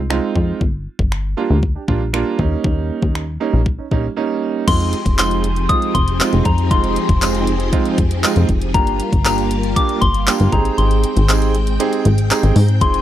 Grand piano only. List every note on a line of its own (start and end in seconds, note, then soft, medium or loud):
0.10 0.58 G#3 medium
0.10 0.58 C4 medium
0.10 0.58 D#4 medium
0.10 0.58 F4 loud
1.37 1.55 G3 medium
1.37 1.55 A#3 medium
1.37 1.55 D4 medium
1.37 1.56 F4 loud
1.75 1.81 D4 soft
1.75 1.82 G4 medium
1.88 2.00 G3 medium
1.88 2.00 A#3 medium
1.88 2.00 D4 medium
1.88 2.00 F4 loud
2.13 2.37 G3 medium
2.13 2.37 A#3 medium
2.13 2.39 D4 medium
2.13 2.39 F4 loud
2.39 3.20 G3 medium
2.39 3.20 A#3 medium
2.39 3.20 C#4 medium
2.39 3.20 D#4 loud
3.40 3.59 G3 medium
3.40 3.59 A#3 medium
3.40 3.59 C#4 medium
3.40 3.59 D#4 loud
3.78 3.85 C#4 soft
3.78 3.85 D#4 soft
3.91 4.03 G3 medium
3.91 4.03 A#3 medium
3.91 4.04 C#4 medium
3.91 4.04 D#4 loud
4.16 4.65 G3 medium
4.16 4.65 A#3 medium
4.16 4.65 C#4 medium
4.16 4.65 D#4 loud
4.67 4.92 G#3 medium
4.67 4.92 C4 medium
4.67 4.92 D#4 medium
4.67 4.92 F4 medium
5.18 5.43 G#3 medium
5.18 5.43 C4 medium
5.18 5.43 D#4 medium
5.18 5.43 F4 medium
5.69 5.93 G#3 medium
5.69 5.94 C4 medium
5.69 5.94 D#4 medium
5.69 5.94 F4 medium
6.20 6.44 G#3 medium
6.20 6.44 C4 medium
6.20 6.44 D#4 medium
6.20 6.45 F4 medium
6.71 6.95 G#3 medium
6.71 6.95 C4 medium
6.71 6.95 D#4 medium
6.71 6.95 F4 medium
7.21 7.46 G#3 medium
7.21 7.46 C4 medium
7.21 7.46 D#4 medium
7.21 7.46 F4 medium
7.73 7.97 G#3 loud
7.73 7.97 C4 medium
7.73 7.97 D#4 medium
7.73 7.97 F4 loud
8.23 8.48 G#3 medium
8.23 8.48 C4 medium
8.23 8.48 D#4 medium
8.23 8.48 F4 loud
8.74 8.98 A#3 medium
8.74 8.99 D4 medium
8.74 8.99 F4 medium
8.74 8.99 G4 medium
9.25 9.49 A#3 medium
9.25 9.49 D4 medium
9.25 9.50 F4 medium
9.25 9.50 G4 medium
9.76 10.00 A#3 medium
9.76 10.00 D4 medium
9.76 10.00 F4 medium
9.76 10.01 G4 medium
10.27 10.51 A#3 medium
10.27 10.51 D4 medium
10.27 10.51 F4 medium
10.27 10.51 G4 medium
10.52 11.13 C4 medium
10.52 11.13 D#4 medium
10.52 11.13 G4 medium
10.52 11.14 G#4 medium
11.29 11.53 C4 medium
11.29 11.53 D#4 medium
11.29 11.53 G4 medium
11.29 11.53 G#4 medium
11.80 12.04 C4 loud
11.80 12.04 D#4 medium
11.80 12.04 G4 medium
11.80 12.04 G#4 loud
12.30 12.55 C4 medium
12.30 12.55 D#4 medium
12.30 12.55 G4 medium
12.30 12.55 G#4 loud
12.30 12.78 A#5 medium
12.81 13.02 C4 medium
12.81 13.02 D#4 medium
12.81 13.02 F4 medium
12.81 13.02 G#4 medium